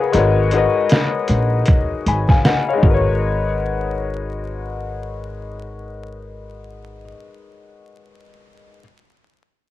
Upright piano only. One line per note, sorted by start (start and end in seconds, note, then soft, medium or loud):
0.00 0.36 G#4 soft
0.00 0.15 A#4 soft
0.00 0.15 B4 medium
0.00 0.15 C#5 medium
0.00 0.16 D#5 medium
0.00 0.16 F5 medium
0.00 0.15 F#5 medium
0.00 0.16 G#5 medium
0.12 0.41 G#3 medium
0.12 0.42 D#4 medium
0.12 0.42 F#4 medium
0.12 0.43 A#4 medium
0.17 0.43 B4 medium
0.17 0.44 C#5 medium
0.52 1.57 G#3 medium
0.52 1.57 D#4 medium
0.52 1.58 F#4 medium
0.52 1.58 A#4 medium
0.56 1.59 B4 medium
0.56 1.59 D#5 medium
2.08 2.29 G#5 soft
2.08 2.29 B5 medium
2.30 2.45 F5 soft
2.30 2.44 G#5 medium
2.46 2.67 D#5 medium
2.46 2.67 F#5 medium
2.69 2.83 C#5 medium
2.69 2.83 F5 medium
2.73 7.01 G#3 medium
2.78 7.06 D#4 medium
2.82 7.10 F#4 medium
2.86 7.14 A#4 medium
2.90 7.18 B4 medium
2.90 7.22 C#5 medium